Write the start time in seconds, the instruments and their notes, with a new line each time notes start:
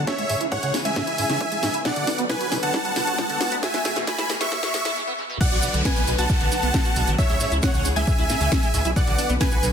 Already playing: riser
0.07 string section C#3 E3 G#3 E4 G#4, acid bass C#4, supersaw synth C#5 E5, kick, snare, closed hi-hat
0.18 analog synth bass C#2, acid bass G#3, closed hi-hat
0.30 acid bass G#2, open hi-hat
0.41 analog synth bass C#2, acid bass E4, closed hi-hat
0.52 acid bass G#2, supersaw synth C#5 F#5, kick, closed hi-hat
0.63 analog synth bass C#2, acid bass C#3, closed hi-hat
0.74 analog synth bass C#2, acid bass C#4, snare, open hi-hat
0.85 analog synth bass C#2, acid bass G#3, supersaw synth E5 G#5, closed hi-hat
0.96 acid bass G#2, kick, snare, closed hi-hat
1.07 analog synth bass C#2, acid bass E4, closed hi-hat
1.18 acid bass G#2, open hi-hat
1.29 analog synth bass C#2, acid bass C#3, snare, closed hi-hat
1.41 acid bass C#4, kick, closed hi-hat
1.52 acid bass G#3, closed hi-hat
1.63 analog synth bass C#2, acid bass G#2, snare, open hi-hat
1.74 analog synth bass C#2, acid bass E4, closed hi-hat
1.85 acid bass B2, string section D3 F#3 B3 F#4 B4, supersaw synth D5 F#5, kick, snare, closed hi-hat
1.96 analog synth bass B1, acid bass D3, closed hi-hat
2.07 acid bass D4, snare, open hi-hat
2.18 analog synth bass B1, acid bass B3, closed hi-hat
2.29 acid bass B2, supersaw synth B4 G#5, kick, snare, closed hi-hat
2.41 analog synth bass B1, acid bass F#4, closed hi-hat
2.52 analog synth bass B1, acid bass B2, snare, open hi-hat
2.63 analog synth bass B1, acid bass D3, supersaw synth F#5 A5, closed hi-hat
2.74 acid bass D4, kick, snare, closed hi-hat
2.85 analog synth bass B1, acid bass B3, closed hi-hat
2.96 acid bass B2, snare, open hi-hat
3.07 analog synth bass B1, acid bass F#4, closed hi-hat
3.18 acid bass B2, kick, snare, closed hi-hat
3.29 acid bass D3, closed hi-hat
3.41 analog synth bass B1, acid bass D4, snare, open hi-hat
3.52 analog synth bass B1, acid bass B3, closed hi-hat
3.63 acid bass G#2, string section E3 G#3 G#4, supersaw synth E5 G#5, kick, snare, closed hi-hat
3.74 analog synth bass E1, acid bass B3, snare, closed hi-hat
3.85 acid bass G#2, snare, open hi-hat
3.96 analog synth bass E1, acid bass B2, snare, closed hi-hat
4.07 acid bass G#3, supersaw synth G#5 B5, kick, snare, closed hi-hat
4.18 acid bass E4, snare, closed hi-hat
4.29 analog synth bass E1, acid bass G#2, snare, open hi-hat
4.41 analog synth bass E1, acid bass B3, supersaw synth E5 C#6, snare, closed hi-hat
4.52 acid bass G#2, kick, snare, closed hi-hat
4.63 analog synth bass E1, acid bass B2, snare, closed hi-hat
4.74 acid bass G#3, snare, open hi-hat
4.85 analog synth bass E1, acid bass E4, snare, closed hi-hat
4.96 acid bass G#2
5.07 acid bass B3
5.18 acid bass G#2
5.30 acid bass B2
5.41 acid bass B2, string section D3 F#3 B3 F#4 B4, supersaw synth D5 F#5, synth pluck F#5, kick, closed hi-hat, crash, downlifter, maracas
5.52 analog synth bass B1, acid bass F#4, closed hi-hat
5.63 acid bass B2, open hi-hat, maracas
5.73 analog synth bass B1, acid bass D3, closed hi-hat, maracas
5.85 acid bass D4, supersaw synth B4 G#5, synth pluck G#5, kick, snare, closed hi-hat, maracas
5.96 analog synth bass B1, acid bass B3, closed hi-hat, maracas
6.07 analog synth bass B1, acid bass B2, open hi-hat, maracas
6.18 analog synth bass B1, acid bass F#4, supersaw synth F#5 A5, synth pluck A5, closed hi-hat, maracas
6.29 acid bass B2, kick, closed hi-hat, maracas
6.41 analog synth bass B1, acid bass D3, closed hi-hat
6.52 acid bass D4, open hi-hat, maracas
6.63 analog synth bass B1, acid bass B3, closed hi-hat, maracas
6.74 acid bass B2, kick, snare, closed hi-hat, maracas
6.85 acid bass F#4, closed hi-hat, maracas
6.96 analog synth bass B1, acid bass B2, open hi-hat, maracas
7.07 analog synth bass A1, acid bass D3, closed hi-hat, maracas
7.18 string section C#3 E3 G#3 E4 G#4, acid bass C#4, supersaw synth C#5 E5, synth pluck E5, kick, closed hi-hat, maracas
7.29 analog synth bass C#2, acid bass G#3, closed hi-hat
7.40 acid bass G#2, open hi-hat, maracas
7.52 analog synth bass C#2, acid bass E4, closed hi-hat, maracas
7.62 acid bass G#2, supersaw synth C#5 F#5, synth pluck F#5, kick, snare, closed hi-hat, maracas
7.74 analog synth bass C#2, acid bass C#3, closed hi-hat, maracas
7.85 analog synth bass C#2, acid bass C#4, open hi-hat, maracas
7.96 analog synth bass C#2, acid bass G#3, supersaw synth E5 G#5, synth pluck G#5, closed hi-hat, maracas
8.07 acid bass G#2, kick, closed hi-hat, maracas
8.18 analog synth bass C#2, acid bass E4, closed hi-hat
8.29 acid bass G#2, snare, open hi-hat, maracas
8.41 analog synth bass C#2, acid bass C#3, closed hi-hat, maracas
8.52 acid bass C#4, kick, snare, closed hi-hat, maracas
8.63 acid bass G#3, closed hi-hat, maracas
8.74 analog synth bass C#2, acid bass G#2, open hi-hat, maracas
8.85 analog synth bass B1, acid bass E4, closed hi-hat, maracas
8.96 acid bass B2, string section D3 F#3 B3 F#4 B4, supersaw synth D5 F#5, synth pluck F#5, kick, closed hi-hat, maracas
9.07 analog synth bass B1, acid bass D3, closed hi-hat
9.18 acid bass D4, open hi-hat, maracas
9.30 analog synth bass B1, acid bass B3, closed hi-hat, maracas
9.41 acid bass B2, supersaw synth B4 G#5, synth pluck G#5, kick, snare, closed hi-hat, maracas
9.52 analog synth bass B1, acid bass F#4, closed hi-hat, maracas
9.63 analog synth bass B1, acid bass B2, open hi-hat, maracas